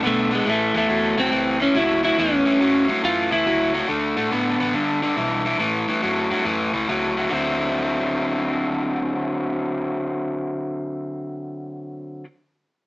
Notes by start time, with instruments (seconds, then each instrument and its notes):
0.02 fingered electric bass B1, overdriven electric guitar D3 B3
0.07 electric slide guitar A3
0.31 overdriven electric guitar D3 B3
0.35 electric slide guitar G#3
0.46 fingered electric bass A1, overdriven electric guitar A2 E3, electric slide guitar A3
0.74 fingered electric bass E2, overdriven electric guitar A2 E3, electric slide guitar A3
0.89 fingered electric bass E2, overdriven electric guitar A2 F#3
1.17 fingered electric bass C#2, overdriven electric guitar A2 F#3, electric slide guitar C4
1.32 fingered electric bass C#2, overdriven electric guitar A2 E3
1.60 overdriven electric guitar A2 E3, electric slide guitar C#4
1.74 fingered electric bass C#2, overdriven electric guitar A2 F#3, electric slide guitar E4
2.03 overdriven electric guitar A2 F#3, electric slide guitar E4
2.18 fingered electric bass E2, overdriven electric guitar A2 E3, electric slide guitar C#4
2.46 fingered electric bass G2, overdriven electric guitar A2 E3
2.61 fingered electric bass F#2, overdriven electric guitar A2 F#3
2.89 fingered electric bass G2, overdriven electric guitar A2 F#3
3.03 fingered electric bass F#2, overdriven electric guitar A2 E3, electric slide guitar F4
3.31 fingered electric bass C#2, overdriven electric guitar A2 E3, electric slide guitar E4
3.46 fingered electric bass C#2, overdriven electric guitar A2 F#3
3.74 overdriven electric guitar A2 F#3
3.89 fingered electric bass D2, overdriven electric guitar D3 A3
4.17 fingered electric bass A2, overdriven electric guitar D3 A3
4.31 fingered electric bass A2, overdriven electric guitar D3 B3
4.59 fingered electric bass A1, overdriven electric guitar D3 B3
4.74 fingered electric bass G1, overdriven electric guitar G2 D3
5.02 overdriven electric guitar G2 D3
5.16 fingered electric bass B1, overdriven electric guitar G2 E3
5.45 overdriven electric guitar G2 E3
5.59 fingered electric bass A1, overdriven electric guitar A2 E3
5.88 fingered electric bass G2, overdriven electric guitar A2 E3
6.02 fingered electric bass F#2, overdriven electric guitar A2 F#3
6.31 fingered electric bass G2, overdriven electric guitar A2 F#3
6.45 fingered electric bass F#2, overdriven electric guitar A2 E3
6.73 fingered electric bass C#2, overdriven electric guitar A2 E3
6.88 fingered electric bass C#2, overdriven electric guitar A2 F#3
7.17 overdriven electric guitar A2 F#3
7.30 fingered electric bass D2, overdriven electric guitar D3 F#3 C4 E4